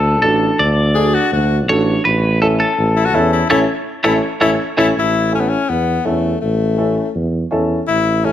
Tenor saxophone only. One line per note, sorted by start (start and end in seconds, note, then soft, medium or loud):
0.95 1.16 G#4 loud
1.14 1.32 F#4 loud
1.33 1.58 F#4 medium
2.96 3.07 E4 medium
3.05 3.16 F#4 loud
3.15 3.32 E4 medium
3.33 3.50 E4 medium
3.50 3.59 E4 loud
4.04 4.13 E4 medium
4.42 4.51 E4 loud
4.79 4.88 E4 medium
4.99 5.32 E4 loud
5.35 5.42 C#4 medium
5.40 5.51 B3 medium
5.49 5.71 C#4 medium
5.69 6.07 B3 medium
6.05 6.41 A3 medium
6.41 7.11 A3 medium
7.88 8.26 E4 medium
8.25 8.32 C#4 medium